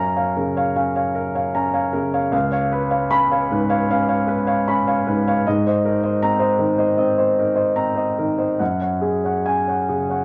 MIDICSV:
0, 0, Header, 1, 2, 480
1, 0, Start_track
1, 0, Key_signature, 6, "major"
1, 0, Tempo, 783290
1, 1425, Time_signature, 4, 2, 24, 8
1, 3342, Tempo, 770218
1, 4782, Tempo, 847458
1, 6187, End_track
2, 0, Start_track
2, 0, Title_t, "Grand piano"
2, 0, Program_c, 0, 0
2, 0, Control_c, 0, 64, 127
2, 0, Note_on_c, 0, 42, 46
2, 0, Note_on_c, 0, 61, 39
2, 0, Note_on_c, 0, 70, 41
2, 0, Note_on_c, 0, 73, 36
2, 0, Note_on_c, 0, 77, 37
2, 0, Note_on_c, 0, 82, 58
2, 100, Note_off_c, 0, 77, 0
2, 100, Note_on_c, 0, 77, 40
2, 104, Note_off_c, 0, 73, 0
2, 104, Note_on_c, 0, 73, 38
2, 173, Note_off_c, 0, 82, 0
2, 212, Note_off_c, 0, 77, 0
2, 214, Note_off_c, 0, 73, 0
2, 224, Note_off_c, 0, 70, 0
2, 224, Note_on_c, 0, 70, 42
2, 228, Note_on_c, 0, 49, 37
2, 345, Note_on_c, 0, 73, 40
2, 351, Note_on_c, 0, 77, 44
2, 365, Note_off_c, 0, 61, 0
2, 417, Note_off_c, 0, 70, 0
2, 438, Note_off_c, 0, 42, 0
2, 452, Note_off_c, 0, 73, 0
2, 456, Note_off_c, 0, 77, 0
2, 466, Note_on_c, 0, 61, 40
2, 467, Note_on_c, 0, 77, 47
2, 577, Note_off_c, 0, 77, 0
2, 586, Note_on_c, 0, 77, 41
2, 587, Note_on_c, 0, 73, 37
2, 608, Note_off_c, 0, 49, 0
2, 692, Note_off_c, 0, 77, 0
2, 693, Note_off_c, 0, 73, 0
2, 704, Note_on_c, 0, 70, 43
2, 827, Note_on_c, 0, 73, 38
2, 831, Note_on_c, 0, 77, 43
2, 847, Note_off_c, 0, 61, 0
2, 895, Note_off_c, 0, 70, 0
2, 933, Note_off_c, 0, 73, 0
2, 935, Note_off_c, 0, 77, 0
2, 948, Note_on_c, 0, 82, 50
2, 950, Note_on_c, 0, 61, 45
2, 1062, Note_on_c, 0, 73, 40
2, 1065, Note_on_c, 0, 77, 44
2, 1139, Note_off_c, 0, 82, 0
2, 1172, Note_off_c, 0, 73, 0
2, 1173, Note_off_c, 0, 77, 0
2, 1182, Note_on_c, 0, 70, 45
2, 1184, Note_on_c, 0, 49, 41
2, 1309, Note_on_c, 0, 73, 43
2, 1312, Note_on_c, 0, 77, 46
2, 1333, Note_off_c, 0, 61, 0
2, 1376, Note_off_c, 0, 70, 0
2, 1416, Note_off_c, 0, 73, 0
2, 1416, Note_off_c, 0, 77, 0
2, 1419, Note_on_c, 0, 37, 54
2, 1425, Note_on_c, 0, 77, 51
2, 1426, Note_off_c, 0, 49, 0
2, 1435, Control_c, 0, 64, 0
2, 1526, Control_c, 0, 64, 127
2, 1541, Note_off_c, 0, 77, 0
2, 1543, Note_on_c, 0, 73, 45
2, 1550, Note_on_c, 0, 77, 49
2, 1653, Note_off_c, 0, 73, 0
2, 1656, Note_off_c, 0, 77, 0
2, 1667, Note_on_c, 0, 71, 47
2, 1782, Note_on_c, 0, 73, 41
2, 1782, Note_on_c, 0, 77, 47
2, 1859, Note_off_c, 0, 71, 0
2, 1892, Note_off_c, 0, 73, 0
2, 1892, Note_off_c, 0, 77, 0
2, 1904, Note_on_c, 0, 61, 48
2, 1904, Note_on_c, 0, 83, 71
2, 2031, Note_on_c, 0, 77, 48
2, 2034, Note_on_c, 0, 73, 43
2, 2097, Note_off_c, 0, 83, 0
2, 2137, Note_off_c, 0, 77, 0
2, 2139, Note_off_c, 0, 73, 0
2, 2151, Note_on_c, 0, 44, 45
2, 2156, Note_on_c, 0, 71, 50
2, 2264, Note_on_c, 0, 73, 50
2, 2267, Note_on_c, 0, 77, 53
2, 2288, Note_off_c, 0, 61, 0
2, 2342, Note_off_c, 0, 71, 0
2, 2356, Note_off_c, 0, 37, 0
2, 2371, Note_off_c, 0, 73, 0
2, 2373, Note_off_c, 0, 77, 0
2, 2394, Note_on_c, 0, 61, 49
2, 2395, Note_on_c, 0, 77, 55
2, 2494, Note_off_c, 0, 77, 0
2, 2503, Note_on_c, 0, 77, 49
2, 2505, Note_on_c, 0, 73, 46
2, 2528, Note_off_c, 0, 44, 0
2, 2610, Note_off_c, 0, 77, 0
2, 2611, Note_off_c, 0, 73, 0
2, 2621, Note_on_c, 0, 71, 47
2, 2739, Note_on_c, 0, 73, 47
2, 2740, Note_on_c, 0, 77, 51
2, 2770, Note_off_c, 0, 61, 0
2, 2813, Note_off_c, 0, 71, 0
2, 2849, Note_off_c, 0, 73, 0
2, 2850, Note_off_c, 0, 77, 0
2, 2866, Note_on_c, 0, 83, 57
2, 2868, Note_on_c, 0, 61, 50
2, 2985, Note_on_c, 0, 73, 45
2, 2987, Note_on_c, 0, 77, 51
2, 3058, Note_off_c, 0, 83, 0
2, 3093, Note_off_c, 0, 73, 0
2, 3094, Note_off_c, 0, 77, 0
2, 3108, Note_on_c, 0, 71, 47
2, 3109, Note_on_c, 0, 44, 42
2, 3233, Note_on_c, 0, 73, 48
2, 3233, Note_on_c, 0, 77, 49
2, 3251, Note_off_c, 0, 61, 0
2, 3298, Note_off_c, 0, 71, 0
2, 3336, Note_off_c, 0, 73, 0
2, 3336, Note_off_c, 0, 77, 0
2, 3344, Note_off_c, 0, 44, 0
2, 3352, Note_on_c, 0, 75, 54
2, 3353, Control_c, 0, 64, 0
2, 3353, Note_on_c, 0, 44, 57
2, 3461, Control_c, 0, 64, 127
2, 3471, Note_off_c, 0, 75, 0
2, 3476, Note_on_c, 0, 72, 47
2, 3480, Note_on_c, 0, 75, 50
2, 3575, Note_off_c, 0, 72, 0
2, 3578, Note_off_c, 0, 75, 0
2, 3590, Note_on_c, 0, 70, 48
2, 3596, Note_on_c, 0, 63, 44
2, 3704, Note_on_c, 0, 75, 49
2, 3706, Note_on_c, 0, 72, 40
2, 3773, Note_off_c, 0, 70, 0
2, 3807, Note_off_c, 0, 75, 0
2, 3808, Note_off_c, 0, 72, 0
2, 3823, Note_on_c, 0, 82, 67
2, 3825, Note_on_c, 0, 60, 45
2, 3928, Note_on_c, 0, 72, 42
2, 3933, Note_on_c, 0, 75, 45
2, 3966, Note_off_c, 0, 63, 0
2, 4009, Note_off_c, 0, 82, 0
2, 4038, Note_off_c, 0, 72, 0
2, 4041, Note_off_c, 0, 75, 0
2, 4052, Note_on_c, 0, 51, 44
2, 4170, Note_on_c, 0, 72, 41
2, 4172, Note_on_c, 0, 75, 46
2, 4201, Note_off_c, 0, 60, 0
2, 4273, Note_off_c, 0, 44, 0
2, 4279, Note_off_c, 0, 72, 0
2, 4280, Note_off_c, 0, 75, 0
2, 4289, Note_on_c, 0, 60, 42
2, 4291, Note_on_c, 0, 75, 49
2, 4409, Note_off_c, 0, 75, 0
2, 4418, Note_on_c, 0, 75, 41
2, 4419, Note_on_c, 0, 72, 39
2, 4437, Note_off_c, 0, 51, 0
2, 4525, Note_off_c, 0, 75, 0
2, 4526, Note_off_c, 0, 72, 0
2, 4546, Note_on_c, 0, 63, 40
2, 4550, Note_on_c, 0, 70, 40
2, 4650, Note_on_c, 0, 75, 42
2, 4654, Note_on_c, 0, 72, 36
2, 4681, Note_off_c, 0, 60, 0
2, 4740, Note_off_c, 0, 70, 0
2, 4766, Note_off_c, 0, 75, 0
2, 4768, Note_off_c, 0, 72, 0
2, 4779, Note_on_c, 0, 82, 49
2, 4780, Note_on_c, 0, 60, 39
2, 4890, Note_on_c, 0, 72, 36
2, 4897, Note_on_c, 0, 75, 40
2, 4926, Note_off_c, 0, 63, 0
2, 4967, Note_off_c, 0, 82, 0
2, 4999, Note_off_c, 0, 72, 0
2, 5003, Note_off_c, 0, 75, 0
2, 5020, Note_on_c, 0, 70, 36
2, 5023, Note_on_c, 0, 51, 34
2, 5132, Note_on_c, 0, 72, 33
2, 5135, Note_on_c, 0, 75, 36
2, 5157, Note_off_c, 0, 60, 0
2, 5209, Note_off_c, 0, 70, 0
2, 5242, Note_off_c, 0, 72, 0
2, 5243, Note_off_c, 0, 75, 0
2, 5252, Note_on_c, 0, 78, 40
2, 5257, Note_on_c, 0, 42, 41
2, 5259, Note_off_c, 0, 51, 0
2, 5265, Control_c, 0, 64, 0
2, 5355, Control_c, 0, 64, 127
2, 5368, Note_off_c, 0, 78, 0
2, 5376, Note_on_c, 0, 73, 32
2, 5377, Note_on_c, 0, 78, 33
2, 5486, Note_off_c, 0, 73, 0
2, 5486, Note_off_c, 0, 78, 0
2, 5490, Note_on_c, 0, 68, 36
2, 5618, Note_on_c, 0, 73, 30
2, 5627, Note_on_c, 0, 78, 35
2, 5689, Note_off_c, 0, 68, 0
2, 5729, Note_off_c, 0, 73, 0
2, 5733, Note_off_c, 0, 78, 0
2, 5738, Note_on_c, 0, 61, 33
2, 5740, Note_on_c, 0, 80, 47
2, 5866, Note_on_c, 0, 73, 31
2, 5872, Note_on_c, 0, 78, 33
2, 5935, Note_off_c, 0, 80, 0
2, 5973, Note_off_c, 0, 73, 0
2, 5977, Note_off_c, 0, 78, 0
2, 5984, Note_on_c, 0, 49, 31
2, 5986, Note_on_c, 0, 68, 35
2, 6102, Note_on_c, 0, 73, 32
2, 6108, Note_on_c, 0, 78, 35
2, 6125, Note_off_c, 0, 61, 0
2, 6176, Note_off_c, 0, 68, 0
2, 6187, Note_off_c, 0, 42, 0
2, 6187, Note_off_c, 0, 49, 0
2, 6187, Note_off_c, 0, 73, 0
2, 6187, Note_off_c, 0, 78, 0
2, 6187, End_track
0, 0, End_of_file